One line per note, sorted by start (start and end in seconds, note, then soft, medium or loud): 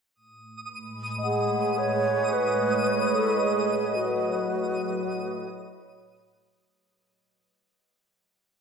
0.15 6.71 A2 medium
0.15 6.73 D#6 medium
0.63 6.71 B4 medium
0.73 3.44 G#3 medium
1.05 4.75 C#5 medium
1.18 3.27 D#5 medium
1.24 1.80 G#4 medium
1.24 3.29 F#5 soft
1.29 3.32 G#5 soft
1.65 6.72 D#5 medium
1.78 2.35 C#5 medium
2.33 3.16 B4 medium
3.15 3.41 A4 medium
3.41 3.97 G#4 medium
3.70 6.71 F#3 medium
3.96 6.15 F#4 medium
5.81 7.22 C#5 medium